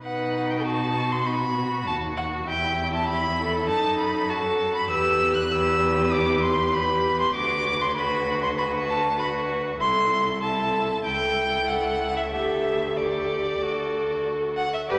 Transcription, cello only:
0, 0, Header, 1, 2, 480
1, 0, Start_track
1, 0, Tempo, 610998
1, 29, Time_signature, 4, 2, 24, 8
1, 8189, Tempo, 625000
1, 9149, Tempo, 642398
1, 11625, End_track
2, 0, Start_track
2, 0, Title_t, "Cello"
2, 0, Program_c, 0, 42
2, 30, Note_on_c, 0, 47, 68
2, 1469, Note_on_c, 0, 39, 60
2, 1481, Note_off_c, 0, 47, 0
2, 1942, Note_off_c, 0, 39, 0
2, 1946, Note_on_c, 0, 40, 78
2, 2895, Note_on_c, 0, 42, 72
2, 2906, Note_off_c, 0, 40, 0
2, 3845, Note_off_c, 0, 42, 0
2, 3850, Note_on_c, 0, 40, 90
2, 5744, Note_off_c, 0, 40, 0
2, 5772, Note_on_c, 0, 38, 80
2, 7671, Note_off_c, 0, 38, 0
2, 7706, Note_on_c, 0, 36, 83
2, 8648, Note_off_c, 0, 36, 0
2, 8669, Note_on_c, 0, 37, 58
2, 9631, Note_on_c, 0, 38, 68
2, 9642, Note_off_c, 0, 37, 0
2, 10599, Note_off_c, 0, 38, 0
2, 10602, Note_on_c, 0, 38, 53
2, 11386, Note_off_c, 0, 38, 0
2, 11556, Note_on_c, 0, 43, 76
2, 11625, Note_off_c, 0, 43, 0
2, 11625, End_track
0, 0, End_of_file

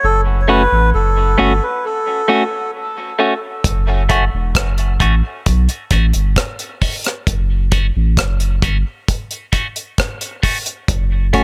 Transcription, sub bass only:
0, 0, Header, 1, 2, 480
1, 0, Start_track
1, 0, Tempo, 904977
1, 11, Time_signature, 4, 2, 24, 8
1, 6066, End_track
2, 0, Start_track
2, 0, Title_t, "Sub bass"
2, 0, Program_c, 0, 38
2, 19, Note_on_c, 0, 30, 104
2, 355, Note_off_c, 0, 30, 0
2, 381, Note_on_c, 0, 33, 91
2, 489, Note_off_c, 0, 33, 0
2, 502, Note_on_c, 0, 30, 106
2, 723, Note_off_c, 0, 30, 0
2, 742, Note_on_c, 0, 31, 85
2, 850, Note_off_c, 0, 31, 0
2, 1937, Note_on_c, 0, 30, 119
2, 2274, Note_off_c, 0, 30, 0
2, 2300, Note_on_c, 0, 28, 83
2, 2410, Note_off_c, 0, 28, 0
2, 2418, Note_on_c, 0, 30, 91
2, 2641, Note_off_c, 0, 30, 0
2, 2659, Note_on_c, 0, 33, 110
2, 2769, Note_off_c, 0, 33, 0
2, 2903, Note_on_c, 0, 35, 93
2, 3011, Note_off_c, 0, 35, 0
2, 3138, Note_on_c, 0, 33, 99
2, 3249, Note_off_c, 0, 33, 0
2, 3263, Note_on_c, 0, 31, 86
2, 3371, Note_off_c, 0, 31, 0
2, 3860, Note_on_c, 0, 30, 111
2, 4196, Note_off_c, 0, 30, 0
2, 4222, Note_on_c, 0, 33, 95
2, 4330, Note_off_c, 0, 33, 0
2, 4339, Note_on_c, 0, 30, 107
2, 4561, Note_off_c, 0, 30, 0
2, 4579, Note_on_c, 0, 31, 92
2, 4689, Note_off_c, 0, 31, 0
2, 5777, Note_on_c, 0, 30, 113
2, 6066, Note_off_c, 0, 30, 0
2, 6066, End_track
0, 0, End_of_file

